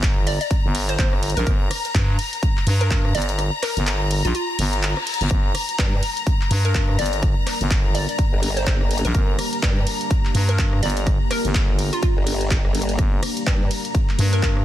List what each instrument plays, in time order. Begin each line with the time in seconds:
Already playing: fm bass G1, string section A#5
0.03 kick, clap, closed hi-hat
0.27 synth pluck D5, open hi-hat, ride
0.41 synth pluck D5, closed hi-hat
0.51 kick, closed hi-hat
0.65 fm bass G1
0.75 open hi-hat, ride
0.89 synth pluck C5, closed hi-hat
0.99 fm bass G1, synth pluck C5, kick, clap, closed hi-hat
1.13 cross-stick
1.23 open hi-hat, ride
1.30 closed hi-hat
1.37 fm bass A#1, synth pluck A#4, closed hi-hat
1.47 fm bass G1, kick, cross-stick, closed hi-hat
1.71 cross-stick, open hi-hat, ride
1.85 closed hi-hat
1.95 fm bass G2, kick, clap, closed hi-hat
2.19 open hi-hat, ride
2.33 closed hi-hat
2.43 kick, closed hi-hat
2.57 clap
2.67 fm bass G2, open hi-hat, ride
2.81 synth pluck A#4, closed hi-hat
2.91 kick, clap
3.05 cross-stick
3.15 fm bass G1, synth pluck D5, open hi-hat, ride
3.22 closed hi-hat
3.29 closed hi-hat
3.39 cross-stick, closed hi-hat
3.63 synth pluck A#4, cross-stick, clap, open hi-hat, ride
3.77 fm bass G1, closed hi-hat
3.87 clap, closed hi-hat
4.11 open hi-hat, ride
4.25 fm bass A#1, synth pluck F4, closed hi-hat
4.35 synth pluck F4, closed hi-hat, reverse cymbal
4.59 fm bass G1, open hi-hat, ride
4.73 closed hi-hat
4.83 clap, closed hi-hat
4.97 cross-stick
5.07 open hi-hat, ride
5.14 closed hi-hat
5.21 fm bass G1, closed hi-hat
5.31 fm bass G1, ambient pad G3 A#3 D4 A#4, kick, cross-stick, closed hi-hat
5.55 cross-stick, open hi-hat, ride
5.69 closed hi-hat
5.79 wobble bass G2, kick, clap, closed hi-hat
6.03 open hi-hat, ride
6.17 closed hi-hat
6.27 kick, closed hi-hat
6.41 clap
6.51 fm bass G2, open hi-hat, ride
6.65 synth pluck A#4, closed hi-hat
6.75 kick, clap
6.89 cross-stick
6.99 fm bass G1, synth pluck D5, open hi-hat, ride
7.06 closed hi-hat
7.13 closed hi-hat
7.23 kick, cross-stick, closed hi-hat
7.47 cross-stick, clap, open hi-hat, ride
7.61 fm bass G1, closed hi-hat
7.71 kick, clap, closed hi-hat
7.95 synth pluck D5, open hi-hat, ride
8.09 synth pluck D5, closed hi-hat
8.19 kick, closed hi-hat
8.33 wobble bass G1
8.43 open hi-hat, ride
8.57 synth pluck C5, closed hi-hat
8.67 wobble bass G1, synth pluck C5, kick, clap, closed hi-hat
8.81 cross-stick
8.91 open hi-hat, ride
8.98 closed hi-hat
9.05 fm bass A#1, synth pluck A#4, closed hi-hat
9.15 fm bass G1, ambient pad G4, kick, cross-stick, closed hi-hat
9.39 cross-stick, open hi-hat, ride
9.53 closed hi-hat
9.63 wobble bass G2, kick, clap, closed hi-hat
9.87 open hi-hat, ride
10.01 closed hi-hat
10.11 kick, closed hi-hat
10.25 clap
10.35 fm bass G2, open hi-hat, ride
10.49 synth pluck A#4, closed hi-hat
10.59 kick, clap
10.73 cross-stick
10.83 fm bass G1, synth pluck D5, open hi-hat, ride
10.90 closed hi-hat
10.97 closed hi-hat
11.07 kick, cross-stick, closed hi-hat
11.31 synth pluck A#4, cross-stick, clap, open hi-hat, ride
11.45 fm bass G1, closed hi-hat
11.55 kick, clap, closed hi-hat
11.79 open hi-hat, ride
11.93 synth pluck F4, closed hi-hat
12.03 synth pluck F4, kick, closed hi-hat
12.17 wobble bass G1
12.27 open hi-hat, ride
12.41 closed hi-hat
12.51 kick, clap, closed hi-hat
12.65 wobble bass G1, cross-stick
12.75 open hi-hat, ride
12.82 closed hi-hat
12.89 closed hi-hat
12.99 fm bass G1, ambient pad A#4, kick, cross-stick, closed hi-hat
13.23 cross-stick, open hi-hat, ride
13.37 closed hi-hat
13.47 wobble bass G2, kick, clap, closed hi-hat
13.71 open hi-hat, ride
13.85 closed hi-hat
13.95 kick, closed hi-hat
14.09 clap
14.19 fm bass G2, open hi-hat, ride
14.33 synth pluck A#4, closed hi-hat
14.43 kick, clap
14.57 cross-stick